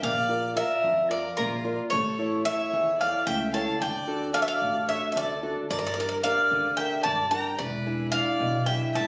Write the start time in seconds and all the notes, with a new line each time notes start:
0.03 A#1 A#3 D5 F5
0.29 F4 A#4 D5
0.56 F4 A#4 D5 E5
0.83 F2 F3
1.09 F4 A#4 D5
1.37 A#1 A#3 F4 A#4
1.64 F4 A#4 D5
1.90 A1 A3 A4 C#5
2.19 E4 A4 C#5
2.45 E4 A4 C#5 E5
2.73 E2 E3
2.98 E4 A4 C#5 D5 F5
3.26 C#2 A3 E5 G5
3.52 E4 A4 C#5 F5 A5
3.79 D2 D3 D5 G5
4.07 D4 F#4 A4
4.33 D4 F#4 A4 D5 F5
4.42 C#5 E5
4.48 D5 F5
4.61 A1 A3
4.89 D4 F#4 A4 C#5 E5
5.11 C#5 E5
5.16 D2 D3 A4 D5
5.43 D4 F#4 A4
5.70 G1 G3 A#4 D5
5.79 D5
5.87 D5
5.94 D4 G4 A#4 D5
6.00 D5
6.09 D5
6.24 D4 G4 A#4 D5 F5
6.51 D2 D3
6.77 D4 G4 A#4 E5 G5
7.03 G1 G3 D5 A5
7.31 D4 G4 A#4 G5 A#5
7.58 E1 E3 B4 D5
7.86 D4 E4 G#4
8.12 D4 E4 G#4 D5 F5
8.40 B1 B2
8.66 D4 E4 G#4 E5 G5
8.93 G#1 E3 E5 A5